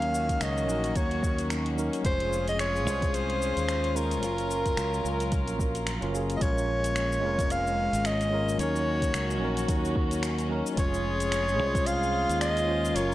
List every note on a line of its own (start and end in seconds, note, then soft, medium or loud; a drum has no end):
0.00 0.38 D#2 medium
0.00 2.03 D#3 medium
0.00 0.64 F#3 medium
0.00 2.03 A#3 medium
0.00 0.65 C#4 medium
0.00 6.37 C#4 medium
0.00 0.66 D#4 medium
0.00 2.03 F#4 medium
0.00 0.67 A#4 medium
0.00 0.44 F5 loud
0.00 closed hi-hat soft
0.15 shaker medium
0.29 kick medium
0.29 closed hi-hat soft
0.29 shaker soft
0.41 0.68 C#2 medium
0.41 0.98 D#5 medium
0.41 finger snap medium
0.41 closed hi-hat medium
0.41 shaker soft
0.58 shaker soft
0.65 0.91 A#1 medium
0.65 1.73 F#3 medium
0.65 1.74 C#4 medium
0.69 1.75 D#4 medium
0.69 1.76 A#4 loud
0.69 shaker medium
0.84 closed hi-hat soft
0.84 shaker soft
0.96 1.89 D#2 medium
0.96 1.51 C#5 medium
0.96 kick medium
0.96 closed hi-hat soft
0.96 shaker soft
1.11 closed hi-hat soft
1.23 kick medium
1.23 shaker medium
1.38 closed hi-hat soft
1.38 shaker soft
1.50 finger snap medium
1.50 closed hi-hat medium
1.50 shaker soft
1.66 closed hi-hat soft
1.76 2.01 F#3 medium
1.76 2.02 C#4 medium
1.76 2.02 D#4 medium
1.76 2.03 A#4 medium
1.76 shaker medium
1.93 closed hi-hat soft
1.93 shaker soft
2.01 2.86 F1 loud
2.01 2.82 G#3 medium
2.01 2.83 C#4 medium
2.01 6.37 F4 medium
2.01 4.20 G#4 medium
2.01 kick loud
2.01 closed hi-hat medium
2.06 2.84 F4 medium
2.06 2.45 C5 loud
2.06 2.85 C5 medium
2.06 shaker soft
2.20 closed hi-hat soft
2.33 shaker medium
2.48 2.59 D#5 loud
2.48 closed hi-hat soft
2.48 shaker soft
2.59 3.16 C#5 loud
2.59 finger snap medium
2.59 closed hi-hat medium
2.59 shaker soft
2.76 shaker soft
2.83 3.52 C2 medium
2.83 3.91 G#3 medium
2.83 3.92 C#4 medium
2.88 3.93 F4 medium
2.88 3.95 C5 medium
2.88 shaker medium
3.02 kick medium
3.02 closed hi-hat soft
3.02 shaker soft
3.14 3.98 C5 loud
3.14 closed hi-hat medium
3.14 shaker soft
3.30 closed hi-hat soft
3.42 shaker medium
3.57 4.23 D#2 medium
3.57 closed hi-hat soft
3.57 shaker soft
3.69 finger snap medium
3.69 closed hi-hat medium
3.69 shaker soft
3.84 closed hi-hat soft
3.94 4.19 G#3 medium
3.94 4.20 C#4 medium
3.94 4.21 F4 medium
3.94 5.87 A#4 medium
3.94 4.21 C5 medium
3.94 shaker medium
4.11 closed hi-hat soft
4.11 shaker soft
4.20 4.74 F#1 medium
4.20 5.00 F#3 medium
4.20 6.39 F#3 medium
4.20 5.02 C#4 medium
4.20 6.39 A#4 medium
4.20 closed hi-hat medium
4.20 shaker soft
4.24 5.03 F4 medium
4.24 5.04 A#4 medium
4.38 closed hi-hat soft
4.38 shaker soft
4.51 shaker medium
4.66 kick medium
4.66 closed hi-hat soft
4.66 shaker soft
4.77 5.00 C#2 medium
4.77 finger snap loud
4.77 closed hi-hat medium
4.77 shaker soft
4.94 shaker soft
5.02 5.48 C#2 medium
5.02 5.98 F#3 medium
5.02 5.99 C#4 medium
5.02 shaker medium
5.06 6.00 F4 medium
5.06 6.01 A#4 medium
5.20 closed hi-hat soft
5.20 shaker soft
5.32 kick loud
5.32 closed hi-hat medium
5.32 shaker soft
5.48 5.98 A#1 medium
5.48 closed hi-hat soft
5.48 shaker soft
5.59 kick loud
5.59 shaker medium
5.75 closed hi-hat soft
5.75 shaker soft
5.87 finger snap loud
5.87 closed hi-hat medium
5.87 shaker soft
6.01 6.38 F#1 medium
6.01 6.10 F#3 medium
6.01 6.11 C#4 medium
6.01 6.11 F4 medium
6.01 6.12 A#4 medium
6.01 closed hi-hat soft
6.12 6.38 F#3 medium
6.12 6.38 C#4 medium
6.12 6.39 F4 medium
6.12 6.39 G#4 medium
6.12 shaker medium
6.30 closed hi-hat soft
6.30 shaker soft
6.37 7.19 G#3 medium
6.37 7.20 C#4 medium
6.37 6.44 D#5 medium
6.41 7.23 A#1 medium
6.41 8.57 G#3 medium
6.41 10.73 A#3 medium
6.41 12.92 C#4 medium
6.41 7.21 F4 medium
6.41 7.22 A#4 medium
6.41 7.53 C#5 loud
6.41 kick loud
6.41 closed hi-hat medium
6.41 shaker medium
6.58 shaker soft
6.84 closed hi-hat soft
6.84 shaker medium
6.96 finger snap loud
6.96 closed hi-hat medium
6.96 shaker medium
7.12 shaker soft
7.20 7.88 F1 medium
7.20 8.28 G#3 medium
7.20 8.29 C#4 medium
7.24 8.30 F4 medium
7.24 8.31 A#4 medium
7.39 kick loud
7.39 closed hi-hat soft
7.39 shaker medium
7.50 8.08 F5 loud
7.50 closed hi-hat medium
7.50 shaker medium
7.67 shaker soft
7.93 8.56 G#1 medium
7.93 closed hi-hat soft
7.93 shaker medium
8.05 8.60 D#5 loud
8.05 finger snap loud
8.05 closed hi-hat medium
8.05 shaker medium
8.21 closed hi-hat soft
8.21 shaker soft
8.30 8.56 G#3 medium
8.30 8.56 C#4 medium
8.30 8.57 F4 medium
8.30 8.57 A#4 medium
8.49 shaker medium
8.56 9.10 D#2 medium
8.56 10.76 D#3 medium
8.56 9.37 F#3 medium
8.56 9.38 C#4 medium
8.56 10.75 F#4 medium
8.56 closed hi-hat medium
8.60 9.39 D#4 medium
8.60 9.40 A#4 medium
8.60 9.65 C#5 medium
8.60 shaker medium
8.76 shaker soft
9.02 kick medium
9.02 closed hi-hat soft
9.02 shaker medium
9.14 9.41 C#2 medium
9.14 finger snap loud
9.14 closed hi-hat medium
9.14 shaker medium
9.30 shaker soft
9.38 9.64 A#1 medium
9.38 10.46 F#3 medium
9.38 10.47 C#4 medium
9.42 10.48 D#4 medium
9.42 10.49 A#4 loud
9.57 closed hi-hat soft
9.57 shaker medium
9.68 10.61 D#2 medium
9.68 kick loud
9.68 closed hi-hat medium
9.68 shaker medium
9.85 shaker soft
9.96 kick loud
10.11 closed hi-hat soft
10.11 shaker medium
10.23 finger snap loud
10.23 closed hi-hat medium
10.23 shaker medium
10.38 closed hi-hat soft
10.38 shaker soft
10.49 10.74 F#3 medium
10.49 10.74 C#4 medium
10.49 10.75 D#4 medium
10.49 10.76 A#4 loud
10.67 shaker medium
10.74 11.59 F1 loud
10.74 11.55 G#3 medium
10.74 11.56 C#4 medium
10.74 13.14 F4 medium
10.74 12.93 G#4 medium
10.74 kick loud
10.74 closed hi-hat medium
10.78 11.57 F4 medium
10.78 11.88 C#5 loud
10.78 11.58 C#5 medium
10.78 shaker medium
10.94 shaker soft
11.20 closed hi-hat soft
11.20 shaker medium
11.32 finger snap loud
11.32 closed hi-hat medium
11.32 shaker medium
11.49 shaker soft
11.56 12.25 C2 medium
11.56 12.64 G#3 medium
11.56 12.65 C#4 medium
11.61 12.66 F4 medium
11.61 12.67 C5 medium
11.75 kick loud
11.75 closed hi-hat soft
11.75 shaker medium
11.86 12.40 F5 loud
11.86 closed hi-hat medium
11.86 shaker medium
12.03 shaker soft
12.29 12.92 D#2 medium
12.29 closed hi-hat soft
12.29 shaker medium
12.41 12.97 D#5 loud
12.41 finger snap loud
12.41 closed hi-hat medium
12.41 shaker medium
12.57 closed hi-hat soft
12.57 shaker soft
12.66 12.92 G#3 medium
12.66 12.93 C#4 medium
12.66 12.93 F4 medium
12.66 12.94 C5 loud
12.85 shaker medium
12.92 13.14 F#1 medium
12.92 13.14 F#3 medium
12.92 13.14 C#4 medium
12.92 13.14 A#4 medium
12.92 13.14 C#5 medium
12.92 closed hi-hat medium
12.97 13.14 F4 medium
12.97 13.14 A#4 medium
12.97 shaker medium